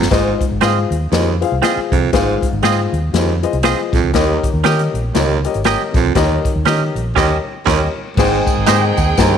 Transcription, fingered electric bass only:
0.01 G1
0.11 G#1
0.51 G#1
0.62 G#2
0.91 D#2
1.12 F2
1.52 C2
1.77 muted fingered electric bass stroke
1.92 C2
2.13 G#1
2.52 G#1
2.63 G#2
2.93 D#2
3.13 F2
3.53 C2
3.93 A#1
4.03 C#2
4.14 D#2
4.54 D#2
4.65 D#3
4.94 A#1
5.15 C#2
5.55 G#1
5.94 A#1
6.06 C#2
6.15 D#2
6.55 D#2
6.66 D#3
6.95 A#1
7.17 D#2
7.67 D#2
8.17 G#1
8.57 G#1
8.68 G#2
8.98 D#2
9.18 G2

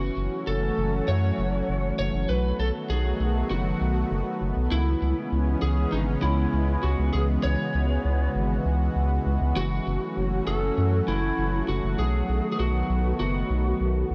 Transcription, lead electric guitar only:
Already playing: F#4
0.47 A4
1.08 C#5
1.99 C#5
2.29 B4
2.60 A4
2.90 G#4
3.51 F#4
4.72 E4
5.62 G#4
5.92 D#4
6.22 E4
6.83 F#4
7.13 G#4
7.43 C#5
9.57 F#4
10.47 A4
11.08 E4
11.69 F#4
11.99 G#4
12.52 G#4
12.59 F#4
13.20 F#4

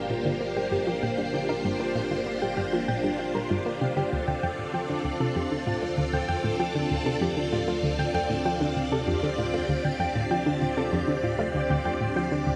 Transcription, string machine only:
Already playing: A#3 D4 F4 G4 C5
4.12 C4 A4 D5
9.07 G4

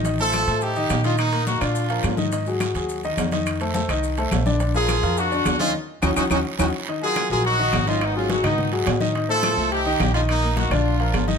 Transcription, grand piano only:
0.05 D#3 D#4 D#5
0.20 A3 A4 C5
0.48 A3 A4 C5
0.76 D#3 D#4 D#5
1.04 D#3 D#4 D#5
1.33 A#3 A#4
1.47 A#3 A#4
1.61 D3 D4 D5
1.90 F3 F4 A#4
2.17 D#3 D#4 D#5
2.32 D#3 D#4 D#5
2.47 F#3 F#4 G#4
2.76 F#3 F#4 G#4
3.04 D#3 D#4 D#5
3.32 D#3 D#4 D#5
3.61 A3 A4 C5
3.75 A3 A4 C5
3.89 D#3 D#4 D#5
4.18 A3 A4 C5
4.46 D3 D4 D5
4.60 D3 D4 D5
4.74 F3 F4 A#4
5.02 F3 F4 A#4
5.31 D3 D4 D5
5.60 D#3 D#4 D#5
6.02 C#4 D#4 F#4
6.17 C#4 D#4 F#4
6.32 C#4 D#4 F#4
6.60 C#4 D#4 F#4
6.89 D#3 D#4 D#5
7.02 F#3 F#4 A#4
7.31 F#3 F#4 A#4
7.59 D#3 D#4 D#5
7.88 D#3 D#4 D#5
8.16 F#3 F#4 G#4
8.29 F#3 F#4 G#4
8.43 D#3 D#4 D#5
8.72 F#3 F#4 G#4
9.01 D#3 D#4 D#5
9.15 D#3 D#4 D#5
9.29 A3 A4 C5
9.57 A3 A4 C5
9.86 D#3 D#4 D#5
10.15 D#3 D#4 D#5
10.43 A#3 A#4
10.57 A#3 A#4
10.71 D3 D4 D5
11.00 F3 F4 A#4
11.28 D#3 D#4 D#5

